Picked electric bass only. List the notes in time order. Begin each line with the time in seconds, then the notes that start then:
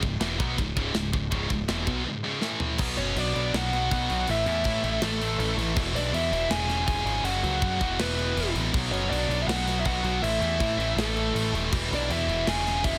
0.02 C#1
0.19 E1
0.40 B1
0.58 C#1
0.76 C#1
0.94 C#1
1.13 C#1
1.32 C#1
1.50 C#1
1.68 E1
1.87 B1
2.79 B1
2.97 F#1
3.15 B1
3.35 B1
3.53 B1
3.91 B1
4.10 B1
4.28 A1
4.46 E2
4.65 A2
4.83 A1
5.01 A1
5.38 A1
5.56 A1
5.76 E1
5.93 B1
6.13 E2
6.31 E1
6.49 E1
6.87 E1
7.05 G#1
7.23 F#1
7.43 C#2
7.62 F#2
7.81 E1
7.99 E1
8.36 E1
8.54 A1
8.73 B1
8.91 F#1
9.10 B1
9.28 B1
9.47 B1
9.85 B1
10.03 B1
10.23 A1
10.40 E2
10.60 A2
10.77 A1
10.95 A1
11.34 A1
11.53 D#1
11.72 E1
11.91 B1
12.09 E2
12.27 E1
12.46 E1
12.84 E1